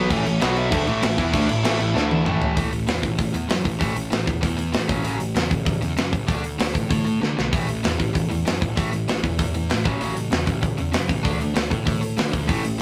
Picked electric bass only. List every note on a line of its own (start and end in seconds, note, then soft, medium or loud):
0.11 0.24 A1 medium
0.25 0.39 A1 medium
0.41 0.70 B1 loud
0.72 0.86 D2 loud
0.86 1.01 A1 loud
1.02 1.17 A1 medium
1.18 1.32 E2 loud
1.34 1.48 D2 loud
1.49 1.63 A1 medium
1.64 1.78 A1 medium
1.78 1.93 A1 medium
1.94 2.23 D2 medium
2.25 2.54 A1 loud
2.57 2.71 A1 medium
2.71 2.86 A1 medium
2.87 3.02 E2 medium
3.03 3.18 A1 medium
3.19 3.32 A1 loud
3.33 3.48 E2 medium
3.49 3.64 F#2 medium
3.65 3.80 A1 medium
3.81 3.95 A1 medium
3.95 4.10 A1 medium
4.10 4.26 A1 medium
4.28 4.42 E2 medium
4.43 4.72 E2 medium
4.73 4.91 A2 medium
4.89 5.04 A1 medium
5.05 5.19 A1 medium
5.20 5.35 A1 medium
5.35 5.50 E2 medium
5.51 5.66 A1 medium
5.67 5.81 A1 medium
5.81 5.96 E2 medium
5.96 6.12 F#2 medium
6.13 6.28 A1 medium
6.28 6.42 D2 medium
6.43 6.58 D2 medium
6.58 6.74 D2 medium
6.75 6.90 A2 medium
6.90 7.20 A2 medium
7.22 7.36 D3 medium
7.38 7.52 B1 medium
7.53 7.68 A1 medium
7.69 7.83 A1 medium
7.84 7.99 E2 medium
8.00 8.14 A1 medium
8.15 8.29 A1 medium
8.30 8.45 E2 medium
8.45 8.60 F#2 medium
8.62 8.76 A1 medium
8.77 8.92 A1 medium
8.93 9.07 A1 medium
9.09 9.23 A1 medium
9.24 9.38 E2 medium
9.39 9.68 E2 medium
9.71 9.85 A2 medium
9.85 10.00 A1 medium
10.01 10.16 A1 medium
10.16 10.31 A1 medium
10.31 10.46 E2 medium
10.47 10.62 A1 medium
10.63 10.77 A1 medium
10.79 10.93 E2 medium
10.93 11.08 F#2 medium
11.09 11.24 A1 medium
11.25 11.39 D2 medium
11.40 11.54 D2 medium
11.55 11.70 D2 medium
11.72 11.86 A2 medium
11.87 12.16 A2 medium
12.17 12.32 D3 medium
12.33 12.48 D2 medium
12.49 12.63 A1 medium
12.64 12.79 A1 medium